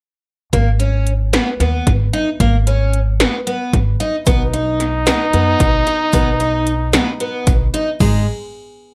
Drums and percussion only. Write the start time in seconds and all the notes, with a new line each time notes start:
0.53 kick, closed hi-hat
0.80 closed hi-hat
1.07 closed hi-hat
1.33 snare, closed hi-hat
1.60 snare, closed hi-hat
1.87 kick, snare, closed hi-hat
2.13 closed hi-hat
2.40 kick, closed hi-hat
2.67 closed hi-hat
2.93 closed hi-hat
3.20 snare, closed hi-hat
3.47 closed hi-hat
3.73 kick, snare, closed hi-hat
4.00 closed hi-hat
4.26 kick, closed hi-hat, shaker
4.54 closed hi-hat
4.80 snare, closed hi-hat
5.06 snare, closed hi-hat, shaker
5.33 closed hi-hat
5.60 kick, snare, closed hi-hat, shaker
5.86 closed hi-hat, shaker
6.13 kick, closed hi-hat, shaker
6.40 closed hi-hat, shaker
6.66 closed hi-hat, shaker
6.93 snare, closed hi-hat, shaker
7.20 closed hi-hat
7.47 kick, snare, closed hi-hat, shaker
7.74 closed hi-hat
8.00 kick, crash, shaker